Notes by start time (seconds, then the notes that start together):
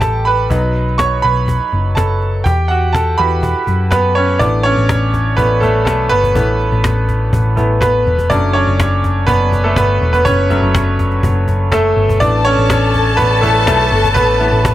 Already playing: A1 G3 A3 D4 G4 A4 B4 G5 B5
0.00 A4 A5, cajon bass, cajon slap
0.25 B4 B5, cajon slap
0.50 B1 F#3 B3 D#4, cajon bass
0.75 cajon slap
0.98 C#5 C#6, cajon bass, cajon slap
1.22 B1 B4 B5, cajon slap
1.36 cajon slap
1.48 cajon bass
1.72 F#1, cajon slap
1.95 A4 A5, cajon bass, cajon slap
2.22 cajon slap
2.44 E2 G4 G5, cajon bass
2.68 F#4 F#5, cajon slap
2.93 A4 A5, cajon bass, cajon slap
3.18 E2 E4 F#4 G4 B4 B5, cajon slap
3.31 cajon slap
3.43 cajon bass
3.67 F#2, cajon bass, cajon slap
3.91 B3 B4, cajon bass, cajon slap
4.15 C#4 C#5, cajon slap
4.39 A1 E3 A3 B3 D4 D5, cajon bass
4.63 C#4 C#5, cajon slap
4.77 A1, cajon slap
4.89 cajon bass, cajon slap
5.14 cajon bass, cajon slap
5.37 A1 E3 A3 B3 B4, cajon bass
5.60 A3 A4, cajon bass, cajon slap
5.85 B1 A3 A4, cajon bass, cajon slap
6.09 G1 B3 B4, cajon slap
6.24 cajon bass
6.35 A1 E3 A3 B3, cajon bass
6.60 cajon slap
6.72 A1, cajon slap
6.84 cajon bass, cajon slap
7.09 cajon bass, cajon slap
7.33 A1, cajon bass
7.56 E3 A3 B3, cajon bass, cajon slap
7.81 B3 B4, cajon bass, cajon slap
8.06 E1, cajon slap
8.18 cajon bass
8.30 F#1 F#3 A3 C#4 D4 D5, cajon bass
8.53 C#4 C#5, cajon slap
8.67 F#1, cajon slap
8.80 cajon bass, cajon slap
9.04 cajon bass, cajon slap
9.27 F#1 B3 B4, cajon bass
9.52 cajon bass, cajon slap
9.64 A3 A4
9.76 G1 B3 B4, cajon bass, cajon slap
10.01 E1, cajon slap
10.13 B3 B4, cajon bass
10.25 F#1 C#4 C#5, cajon bass
10.50 F#3 A3 C#4, cajon bass, cajon slap
10.62 F#1, cajon slap
10.75 cajon bass, cajon slap
10.99 cajon bass, cajon slap
11.11 cajon slap
11.23 F#1, cajon bass
11.47 cajon bass, cajon slap
11.72 A3 A4, cajon bass, cajon slap
11.97 G1, cajon slap
12.09 cajon bass
12.20 A1 E3 A3 B3 D4 A4 D5 A5, cajon bass
12.45 C#4 C#5, cajon slap
12.58 A1, cajon slap
12.70 cajon bass, cajon slap
12.94 cajon bass, cajon slap
13.17 A1 B3 B4, cajon bass
13.41 E3 A3 B3 A4, cajon bass, cajon slap
13.67 B1 A3 A4, cajon bass, cajon slap
13.92 G1, cajon slap
14.04 cajon bass
14.14 A1 B3 B4, cajon bass
14.39 E3 A3 B3, cajon slap
14.52 A1
14.65 cajon bass, cajon slap